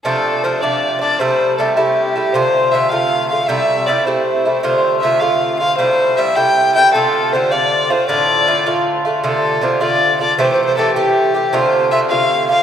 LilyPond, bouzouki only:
\new Staff \with { instrumentName = "Bouzouki" } { \time 6/8 \key d \minor \tempo 4. = 105 <c f a d'>4 <c f a d'>8 <c f a d'>4 <f a d'>8 | <c g a e'>4 <c g a e'>8 <c g a e'>4 <g a e'>8 | <c d a f'>4 <c d a f'>8 <c d a f'>4 <d a f'>8 | <c g a e'>4 <c g a e'>8 <c g a e'>4 <g a e'>8 |
<c d a f'>4 <c d a f'>8 <c d a f'>4 <d a f'>8 | <c g a e'>4 <c g a e'>8 <c g a e'>4 <g a e'>8 | <c d a f'>4 <c d a f'>8 <c d a f'>4 <d a f'>8 | <a, d a f'>4 <a, d a f'>8 <a, d a f'>4 <d a f'>8 |
<c d a f'>4 <c d a f'>8 <c d a f'>4 <d a f'>8 | <c e a g'>4 <c e a g'>8 <c e a g'>4 <e a g'>8 | <c d a f'>4 <c d a f'>8 <c d a f'>4 <d a f'>8 | }